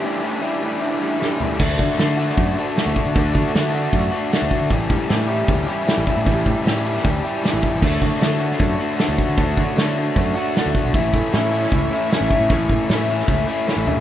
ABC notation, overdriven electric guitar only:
X:1
M:4/4
L:1/8
Q:1/4=154
K:D
V:1 name="Overdriven electric guitar"
[A,,E,G,CG] [A,,E,G,CG] [A,,E,G,CG] [A,,E,G,CG] [A,,E,G,CG] [A,,E,G,CG] [A,,E,G,CG] [A,,E,G,CG] | [D,A,DF] [A,DF] [D,A,DF] [A,DF]2 [A,DF] [D,A,DF]2 | [D,A,DF] [A,DF] [D,A,DF] [A,DF]2 [A,DF] [D,A,DF]2 | [A,,E,G,CG] [G,CG] [E,G,CG] [G,CG]2 [G,CG] [A,,E,G,CG]2 |
[A,,E,G,CG] [G,CG] [E,G,CG] [G,CG]2 [G,CG] [A,,E,G,CG]2 | [D,A,DF] [A,DF] [D,A,DF] [A,DF]2 [A,DF] [D,A,DF]2 | [D,A,DF] [A,DF] [D,A,DF] [A,DF]2 [A,DF] [D,A,DF]2 | [A,,E,A,CE] [A,CE] [E,A,CE] [A,CE]2 [A,CE] [A,,E,A,CE]2 |
[A,,E,A,CE] [A,CE] [E,A,CE] [A,CE]2 [A,CE] [A,,E,A,CE]2 |]